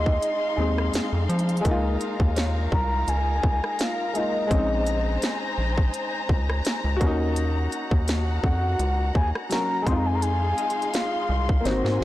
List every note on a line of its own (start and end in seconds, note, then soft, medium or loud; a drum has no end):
0.00 0.19 D#2 loud
0.00 0.52 G#3 medium
0.00 0.54 C4 medium
0.00 0.55 D#4 medium
0.00 9.83 D#4 medium
0.00 0.57 F4 medium
0.00 1.62 G#4 medium
0.00 0.94 D#5 medium
0.00 4.47 F5 medium
0.00 1.62 C6 medium
0.06 kick medium
0.22 closed hi-hat medium
0.56 0.90 D#2 loud
0.56 1.59 G#3 medium
0.56 1.65 C4 soft
0.56 1.66 D#4 soft
0.61 1.67 G#4 medium
0.78 cross-stick medium
0.94 1.01 F2 soft
0.94 snare loud
0.94 closed hi-hat medium
1.13 1.28 F2 medium
1.29 1.62 F3 loud
1.29 closed hi-hat medium
1.39 closed hi-hat medium
1.49 closed hi-hat soft
1.57 closed hi-hat soft
1.61 4.09 G#3 medium
1.61 4.11 A#3 medium
1.61 closed hi-hat medium
1.65 1.98 C#2 loud
1.65 4.12 D#4 medium
1.65 4.48 A#4 medium
1.65 9.83 A#5 medium
1.65 kick loud
1.71 4.14 F4 medium
2.01 closed hi-hat medium
2.20 2.68 D#2 medium
2.20 kick medium
2.36 3.28 C#5 medium
2.36 snare loud
2.36 closed hi-hat medium
2.72 3.04 C2 loud
2.72 3.10 A#5 loud
2.72 kick loud
3.08 3.40 C#2 loud
3.08 3.82 G#5 loud
3.08 closed hi-hat medium
3.43 3.61 C#2 medium
3.43 kick loud
3.64 cross-stick medium
3.79 4.17 F5 loud
3.79 snare loud
3.79 closed hi-hat medium
4.13 4.45 G#3 medium
4.13 4.51 A#3 soft
4.13 4.52 D#4 soft
4.13 5.58 D#5 medium
4.13 closed hi-hat medium
4.18 4.53 F4 medium
4.47 6.95 G#3 medium
4.47 6.96 C4 medium
4.47 6.98 C5 medium
4.51 5.18 A#1 loud
4.51 6.98 C#4 medium
4.51 6.98 G#5 medium
4.51 kick loud
4.51 closed hi-hat medium
4.57 7.00 D#4 medium
4.87 closed hi-hat medium
5.22 snare loud
5.22 closed hi-hat medium
5.58 5.90 A#1 medium
5.78 kick medium
5.94 closed hi-hat medium
6.29 6.62 C#2 medium
6.29 kick medium
6.50 cross-stick loud
6.65 snare loud
6.65 closed hi-hat medium
6.84 6.99 C#2 loud
6.97 9.46 A#3 medium
6.97 9.45 F#4 medium
7.01 7.68 D#2 loud
7.01 9.48 C#4 medium
7.01 9.84 F#4 medium
7.01 9.84 F#5 medium
7.01 kick loud
7.01 closed hi-hat medium
7.07 9.50 D#4 medium
7.36 closed hi-hat medium
7.72 closed hi-hat medium
7.91 8.40 D#2 medium
7.91 kick loud
8.08 snare loud
8.08 closed hi-hat medium
8.43 8.76 F2 loud
8.43 9.12 F#5 loud
8.43 kick medium
8.79 9.12 C#2 loud
8.79 closed hi-hat medium
9.15 9.33 D#2 loud
9.15 9.30 G#5 loud
9.15 kick medium
9.35 cross-stick medium
9.49 9.86 F#3 soft
9.49 9.87 A#3 soft
9.49 9.87 C#4 soft
9.49 9.88 A#5 loud
9.49 snare loud
9.49 closed hi-hat medium
9.54 9.88 F#4 medium
9.82 11.59 G#3 medium
9.82 11.61 C4 medium
9.87 10.54 F2 loud
9.87 11.63 D#4 medium
9.87 11.63 G#4 medium
9.87 11.63 F5 medium
9.87 12.04 C6 medium
9.87 9.98 C6 medium
9.87 kick loud
9.87 closed hi-hat medium
9.92 11.64 F4 medium
9.97 10.08 A#5 medium
10.06 10.16 G#5 loud
10.15 10.24 A#5 loud
10.22 10.93 G#5 loud
10.22 closed hi-hat medium
10.58 11.50 D#5 medium
10.58 closed hi-hat medium
10.70 closed hi-hat medium
10.82 closed hi-hat soft
10.94 11.67 F5 loud
10.94 snare loud
10.94 closed hi-hat medium
11.29 11.62 C2 loud
11.49 kick medium
11.61 12.04 A#3 medium
11.61 12.04 C4 medium
11.65 11.83 G#1 loud
11.65 12.04 D#4 medium
11.65 12.04 F#4 medium
11.65 12.04 A#4 medium
11.65 12.04 C5 medium
11.65 12.04 G#5 medium
11.65 snare medium
11.65 closed hi-hat medium
11.71 12.04 F#4 medium
11.85 11.99 G#2 loud
11.85 snare medium
12.01 12.04 G#1 medium